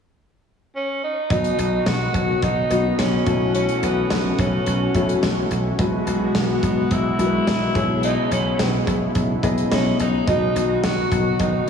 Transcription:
0.76 tenor saxophone C#4
1.04 tenor saxophone D#4
1.30 slap bass B1, grand piano B2 B3 D#4 F#4 D#5, analog synth pad D#3 F#3 B3 F#4, tenor saxophone D#4, kick, closed hi-hat
1.44 closed hi-hat
1.58 slap bass B1, closed hi-hat
1.86 slap bass B1, tenor saxophone F#4, snare, closed hi-hat
2.14 slap bass B1, kick, closed hi-hat
2.42 slap bass B1, tenor saxophone D#4, kick, closed hi-hat
2.70 slap bass B1, grand piano B3 D#4 F#4 D#5, closed hi-hat
2.98 slap bass B1, tenor saxophone C#4, snare, closed hi-hat
3.26 slap bass B1, grand piano B2 A3 E4 F#4 C#5, analog synth pad E3 A3 C#4 F#4, kick, closed hi-hat
3.55 tenor saxophone C#4, closed hi-hat
3.69 closed hi-hat
3.83 slap bass B1, tenor saxophone B3, closed hi-hat
4.10 slap bass B1, snare, closed hi-hat
4.38 slap bass B1, tenor saxophone C#4, kick, closed hi-hat
4.66 slap bass B1, closed hi-hat
4.94 slap bass B1, grand piano A3 E4 F#4 C#5, kick, closed hi-hat
5.09 closed hi-hat
5.23 slap bass B1, snare, closed hi-hat
5.51 slap bass B1, closed hi-hat
5.79 slap bass B1, grand piano B2 G#3 E4 F#4 B4, analog synth pad G#3 B3 F#4, kick, closed hi-hat
6.07 slap bass B1, closed hi-hat
6.35 slap bass B1, tenor saxophone B3, snare, closed hi-hat
6.63 slap bass B1, kick, closed hi-hat
6.91 slap bass B1, tenor saxophone E4, kick, closed hi-hat
7.18 slap bass B1, grand piano G#3 E4 F#4 A#4, closed hi-hat
7.26 grand piano B4
7.47 slap bass B1, snare, closed hi-hat
7.74 slap bass B1, grand piano B2 B3 E4 G#4 C#5, analog synth pad C#3 B3 E4, kick, closed hi-hat
8.03 tenor saxophone D#4, closed hi-hat
8.31 slap bass B1, tenor saxophone C#4, closed hi-hat
8.59 slap bass B1, snare, closed hi-hat
8.87 slap bass B1, kick, closed hi-hat
9.15 slap bass B1, kick, closed hi-hat
9.43 slap bass B1, grand piano B3 E4 G#4 D#5, kick, closed hi-hat
9.58 closed hi-hat
9.71 slap bass B1, tenor saxophone C#4, snare, closed hi-hat
9.99 slap bass B1, tenor saxophone D#4, closed hi-hat
10.27 slap bass B1, grand piano B2 B3 D#4 F#4 D#5, analog synth pad D#3 F#3 B3 F#4, tenor saxophone D#4, kick, closed hi-hat
10.55 slap bass B1, closed hi-hat
10.84 slap bass B1, tenor saxophone F#4, snare, closed hi-hat
11.12 slap bass B1, kick, closed hi-hat
11.39 slap bass B1, tenor saxophone D#4, kick, closed hi-hat

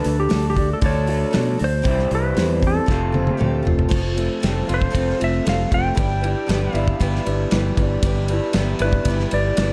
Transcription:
Already playing: clean electric guitar D3 A3 D4 F#4, electric slide guitar B4
0.03 fingered electric bass D2, twelve-string acoustic guitar D4 F#4 A4, open hi-hat
0.20 electric slide guitar G4
0.29 fingered electric bass D2, twelve-string acoustic guitar A3 D4 F#4 A4, snare, open hi-hat
0.50 electric slide guitar G4
0.55 twelve-string acoustic guitar D4 F#4 A4, kick, open hi-hat
0.73 electric slide guitar A4
0.81 fingered electric bass D2, twelve-string acoustic guitar D3 A3 D4 F#4 A4, clean electric guitar D3 A3 D4 F#4, kick, open hi-hat
0.86 electric slide guitar C#5
1.06 clean electric guitar A3 D4 F#4, twelve-string acoustic guitar D4 F#4 A4, open hi-hat
1.11 clean electric guitar D3
1.31 twelve-string acoustic guitar A3 D4 F#4 A4, snare, open hi-hat
1.36 fingered electric bass B2
1.58 fingered electric bass D2, twelve-string acoustic guitar D4 F#4 A4, open hi-hat
1.64 electric slide guitar C5
1.82 fingered electric bass C2, twelve-string acoustic guitar C3 E3 G3 C4 E4 C5, clean electric guitar C3 E3, kick, open hi-hat
1.86 clean electric guitar G3 C4 E4
1.99 snare
2.09 fingered electric bass C2, twelve-string acoustic guitar G3 C4 E4 C5, open hi-hat
2.15 electric slide guitar B4
2.35 fingered electric bass E2, twelve-string acoustic guitar G3 C4 E4 C5, snare, open hi-hat
2.60 twelve-string acoustic guitar C4 E4 C5, kick, open hi-hat
2.64 twelve-string acoustic guitar G3, electric slide guitar A4
2.86 fingered electric bass F1, clean electric guitar F2 C3 F3 A3, twelve-string acoustic guitar F3 A3 C4 F4 A4, kick, snare
2.91 clean electric guitar C4 F4
3.12 twelve-string acoustic guitar C4 F4 A4, high tom
3.27 high tom
3.35 twelve-string acoustic guitar A3 C4, electric slide guitar G4
3.39 fingered electric bass D2, twelve-string acoustic guitar F4 A4, mid tom
3.63 fingered electric bass F1, twelve-string acoustic guitar C4 F4 A4
3.67 floor tom
3.79 floor tom
3.89 fingered electric bass F1, clean electric guitar F2, twelve-string acoustic guitar F3 A3 C4 F4 A4, kick, crash
4.14 clean electric guitar A3, twelve-string acoustic guitar C4 F4 A4, ride
4.40 fingered electric bass F1, twelve-string acoustic guitar A3 C4 F4 A4, clean electric guitar C4, snare, ride
4.65 twelve-string acoustic guitar C4 F4 A4
4.69 fingered electric bass F1, clean electric guitar F4, ride
4.74 electric slide guitar C5
4.82 kick
4.90 twelve-string acoustic guitar F3 A3 C4 F4 A4, clean electric guitar C4
4.94 fingered electric bass F1, kick, ride
5.10 snare
5.17 clean electric guitar A3, twelve-string acoustic guitar C4 F4 A4, ride
5.22 fingered electric bass F1, electric slide guitar E5
5.45 fingered electric bass F1, clean electric guitar F3, twelve-string acoustic guitar A3 C4 F4 A4, snare, ride
5.49 electric slide guitar F5
5.69 fingered electric bass F1, clean electric guitar A3, twelve-string acoustic guitar C4 F4 A4, kick, ride
5.74 electric slide guitar G5
5.95 fingered electric bass G1, clean electric guitar G2, twelve-string acoustic guitar G3 D4 E4 B4, kick, ride
6.21 clean electric guitar G3, twelve-string acoustic guitar D4 E4 B4, ride
6.46 fingered electric bass G1, twelve-string acoustic guitar G3 D4 E4 B4, clean electric guitar B3, snare, ride
6.73 fingered electric bass G1, twelve-string acoustic guitar D4 E4 B4, clean electric guitar E4, electric slide guitar F5, ride
6.88 kick
7.00 fingered electric bass G1, twelve-string acoustic guitar G3 D4 E4 B4, clean electric guitar B3, kick, ride
7.16 snare
7.26 fingered electric bass G1, clean electric guitar G3, twelve-string acoustic guitar D4 E4 B4, ride
7.51 fingered electric bass G1, clean electric guitar E3, twelve-string acoustic guitar G3 D4 E4, snare, ride
7.55 twelve-string acoustic guitar B4
7.77 fingered electric bass G1, clean electric guitar G3, twelve-string acoustic guitar D4 E4 B4, kick, ride
8.03 fingered electric bass G1, clean electric guitar G2, twelve-string acoustic guitar G3 D4 E4 B4, kick, ride
8.28 clean electric guitar G3, twelve-string acoustic guitar B4, ride
8.33 twelve-string acoustic guitar D4 E4
8.53 fingered electric bass G1, twelve-string acoustic guitar G3 D4, clean electric guitar B3, snare, ride
8.58 twelve-string acoustic guitar E4 B4
8.79 fingered electric bass G1, clean electric guitar E4, twelve-string acoustic guitar E4 B4, electric slide guitar B4, ride
8.85 twelve-string acoustic guitar D4
8.93 kick
9.05 fingered electric bass G1, twelve-string acoustic guitar G3 D4, clean electric guitar B3, kick, ride
9.09 twelve-string acoustic guitar E4 B4
9.20 snare
9.31 fingered electric bass G1, clean electric guitar G3, twelve-string acoustic guitar B4, electric slide guitar D5, ride
9.36 twelve-string acoustic guitar D4 E4
9.57 fingered electric bass G1, clean electric guitar E3, twelve-string acoustic guitar G3 D4 E4, snare, ride
9.61 twelve-string acoustic guitar B4

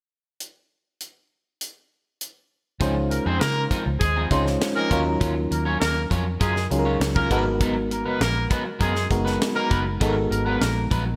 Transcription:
0.40 closed hi-hat
1.00 closed hi-hat
1.61 closed hi-hat
2.21 closed hi-hat
2.80 fingered electric bass C#2, clean electric guitar F3 C4 D#4 G#4, fm electric piano G#3 C#4 D#4 F4 C5, kick, closed hi-hat
2.96 muted clean electric guitar stroke
3.10 horn section A#3 A#4, muted clean electric guitar stroke, closed hi-hat
3.25 fingered electric bass F2, clean electric guitar F3 C4 D#4 G#4, horn section C4 C5
3.40 fingered electric bass C#3, horn section A#3 A#4, muted clean electric guitar stroke, snare, closed hi-hat
3.56 muted clean electric guitar stroke
3.71 clean electric guitar F3 C4 D#4 A#4, kick, closed hi-hat
3.86 fingered electric bass C#2, muted clean electric guitar stroke
4.00 fingered electric bass D#2, horn section G#3 G#4, muted clean electric guitar stroke, kick, closed hi-hat
4.16 clean electric guitar F3 C4 D#4 G#4
4.31 fingered electric bass C#2, clean electric guitar F3 C4 D#4 G#4, fm electric piano G#3 C#4 D#4 F4 C5, kick, closed hi-hat
4.46 muted clean electric guitar stroke, snare
4.61 muted clean electric guitar stroke, snare, closed hi-hat
4.75 clean electric guitar F3 C4 D#4 G#4, horn section A#3 A#4
4.90 fingered electric bass D#2, clean electric guitar F#3 C#4 F4 C#5, fm electric piano F#3 C#4 D#4 F4 A#4, kick, closed hi-hat
5.05 muted clean electric guitar stroke
5.20 fingered electric bass D#2, clean electric guitar F#3 C#4 F4 A#4, kick, closed hi-hat
5.35 muted clean electric guitar stroke
5.51 fingered electric bass D#2, horn section A#3 A#4, muted clean electric guitar stroke, closed hi-hat
5.65 clean electric guitar F#3 C#4 F4 A#4, horn section C#4 C#5
5.80 fingered electric bass D#2, horn section A#3 A#4, muted clean electric guitar stroke, snare, closed hi-hat
5.96 muted clean electric guitar stroke
6.10 fingered electric bass F2, clean electric guitar F#3 C#4 F4 C#5, kick, closed hi-hat
6.26 muted clean electric guitar stroke
6.40 fingered electric bass F#2, clean electric guitar F#3 C#4 F4 A#4, horn section G#3 G#4, kick, closed hi-hat
6.55 muted clean electric guitar stroke, snare
6.70 fingered electric bass C#2, fm electric piano F#3 C#4 D#4 F4 G#4, muted clean electric guitar stroke, closed hi-hat
6.79 fm electric piano A#4
6.85 clean electric guitar F#3 C#4 F4 C#5
7.00 fingered electric bass C#2, muted clean electric guitar stroke, snare, closed hi-hat
7.16 clean electric guitar F#3 C#4 F4 A#4, horn section A#3 A#4, kick
7.30 fingered electric bass G#1, clean electric guitar F#3 B3 D#4 B4, fm electric piano G#3 B3 D#4 F#4 A4, kick, closed hi-hat
7.38 fm electric piano A#4
7.46 muted clean electric guitar stroke
7.61 clean electric guitar F#3 B3 D#4 A#4, kick, closed hi-hat
7.75 muted clean electric guitar stroke
7.91 horn section A#3 A#4, muted clean electric guitar stroke, closed hi-hat
8.05 fingered electric bass F#1, clean electric guitar F#3 B3 D#4 A#4, horn section B3 B4
8.20 fingered electric bass A#1, horn section A#3 A#4, muted clean electric guitar stroke, snare, closed hi-hat
8.36 muted clean electric guitar stroke
8.50 clean electric guitar F#3 B3 D#4 B4, kick, closed hi-hat
8.65 muted clean electric guitar stroke
8.79 fingered electric bass F#2, clean electric guitar F#3 B3 D#4 A#4, horn section G#3 G#4, kick, closed hi-hat
8.95 muted clean electric guitar stroke, snare
9.11 fingered electric bass F#1, fm electric piano G#3 B3 D#4 F#4 A#4, muted clean electric guitar stroke, kick, closed hi-hat
9.25 clean electric guitar F#3 B3 D#4 B4, snare
9.40 muted clean electric guitar stroke, snare, closed hi-hat
9.55 clean electric guitar F#3 B3 D#4 A#4, horn section A#3 A#4
9.69 fingered electric bass F#1, clean electric guitar F#3 B3 D#4 B4, kick, closed hi-hat
9.85 muted clean electric guitar stroke
10.00 fingered electric bass G#1, clean electric guitar F#3 B3 D#4 A#4, fm electric piano G#3 B3 D#4 F#4 A4, kick, closed hi-hat
10.08 fm electric piano A#4
10.16 muted clean electric guitar stroke
10.30 fingered electric bass G#1, horn section A#3 A#4, muted clean electric guitar stroke, closed hi-hat
10.45 clean electric guitar F#3 B3 D#4 A#4, horn section B3 B4
10.61 fingered electric bass A#1, horn section A#3 A#4, muted clean electric guitar stroke, snare, closed hi-hat
10.76 muted clean electric guitar stroke
10.91 fingered electric bass A#1, clean electric guitar F#3 B3 D#4 B4, kick, closed hi-hat
11.06 muted clean electric guitar stroke

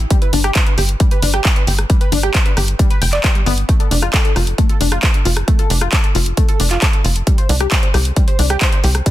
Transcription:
0.10 synth arpeggio sound G3, kick, closed hi-hat
0.22 synth arpeggio sound B4, closed hi-hat
0.33 analog synth bass G1, synth arpeggio sound D4, open hi-hat
0.44 synth arpeggio sound G4, cross-stick, closed hi-hat
0.55 kick, clap, closed hi-hat
0.67 synth arpeggio sound B4, closed hi-hat
0.78 analog synth bass G1, synth arpeggio sound G4, open hi-hat
0.89 closed hi-hat
1.00 synth arpeggio sound G3, kick, closed hi-hat
1.11 synth arpeggio sound B4, closed hi-hat
1.22 analog synth bass G1, synth arpeggio sound D4, open hi-hat
1.34 synth arpeggio sound G4, cross-stick, closed hi-hat
1.45 kick, clap, closed hi-hat
1.56 synth arpeggio sound B4, closed hi-hat
1.67 analog synth bass G1, synth arpeggio sound G4, open hi-hat
1.79 cross-stick, closed hi-hat
1.90 synth arpeggio sound G3, kick, closed hi-hat
2.01 synth arpeggio sound B4, closed hi-hat
2.12 analog synth bass G1, synth arpeggio sound D4, open hi-hat
2.23 synth arpeggio sound G4, cross-stick, closed hi-hat
2.35 kick, clap, closed hi-hat
2.46 synth arpeggio sound B4, closed hi-hat
2.57 analog synth bass G1, synth arpeggio sound G4, cross-stick, open hi-hat
2.68 closed hi-hat
2.79 synth arpeggio sound G3, kick, closed hi-hat
2.91 synth arpeggio sound B4, closed hi-hat
3.02 analog synth bass F1, synth arpeggio sound G5, open hi-hat
3.13 synth arpeggio sound D5, clap, closed hi-hat
3.24 synth arpeggio sound G4, kick, clap, closed hi-hat
3.35 synth arpeggio sound G3, closed hi-hat
3.46 analog synth bass G1, synth arpeggio sound B3, open hi-hat
3.58 closed hi-hat
3.69 synth arpeggio sound A3, kick, closed hi-hat
3.80 synth arpeggio sound A4, closed hi-hat
3.91 analog synth bass F1, synth arpeggio sound D4, open hi-hat
4.02 synth arpeggio sound F4, cross-stick, closed hi-hat
4.14 synth arpeggio sound A4, kick, clap, closed hi-hat
4.25 synth arpeggio sound A4, closed hi-hat
4.36 analog synth bass F1, synth arpeggio sound F4, cross-stick, open hi-hat
4.47 closed hi-hat
4.58 synth arpeggio sound A3, kick, closed hi-hat
4.69 synth arpeggio sound A4, closed hi-hat
4.81 analog synth bass F1, synth arpeggio sound D4, open hi-hat
4.92 synth arpeggio sound F4, cross-stick, closed hi-hat
5.03 synth arpeggio sound A4, kick, clap, closed hi-hat
5.14 synth arpeggio sound A4, closed hi-hat
5.25 analog synth bass F1, synth arpeggio sound F4, open hi-hat
5.37 cross-stick, closed hi-hat
5.48 synth arpeggio sound A3, kick, closed hi-hat
5.59 synth arpeggio sound A4, closed hi-hat
5.70 analog synth bass F1, synth arpeggio sound D4, open hi-hat
5.81 synth arpeggio sound F4, cross-stick, closed hi-hat
5.93 synth arpeggio sound A4, kick, clap, closed hi-hat
6.04 synth arpeggio sound A4, closed hi-hat
6.15 analog synth bass F1, synth arpeggio sound F4, open hi-hat
6.26 closed hi-hat
6.37 synth arpeggio sound A3, kick, closed hi-hat
6.49 synth arpeggio sound A4, closed hi-hat
6.60 analog synth bass F1, synth arpeggio sound D4, open hi-hat
6.71 synth arpeggio sound F4, clap, closed hi-hat
6.82 synth arpeggio sound A4, kick, clap, closed hi-hat
6.93 synth arpeggio sound A4, closed hi-hat
7.05 analog synth bass F1, synth arpeggio sound F4, open hi-hat
7.16 closed hi-hat
7.27 synth arpeggio sound G3, kick, closed hi-hat
7.38 synth arpeggio sound C5, closed hi-hat
7.49 analog synth bass C2, synth arpeggio sound D4, open hi-hat
7.60 synth arpeggio sound G4, cross-stick, closed hi-hat
7.72 synth arpeggio sound C5, kick, clap, closed hi-hat
7.83 synth arpeggio sound C5, closed hi-hat
7.94 analog synth bass C2, synth arpeggio sound G4, cross-stick, open hi-hat
8.05 closed hi-hat
8.16 synth arpeggio sound G3, kick, closed hi-hat
8.28 synth arpeggio sound C5, closed hi-hat
8.39 analog synth bass C2, synth arpeggio sound D4, open hi-hat
8.50 synth arpeggio sound G4, cross-stick, closed hi-hat
8.61 synth arpeggio sound C5, kick, clap, closed hi-hat
8.72 synth arpeggio sound C5, closed hi-hat
8.84 analog synth bass C2, synth arpeggio sound G4, open hi-hat
8.95 cross-stick, closed hi-hat
9.06 synth arpeggio sound G3, kick, closed hi-hat

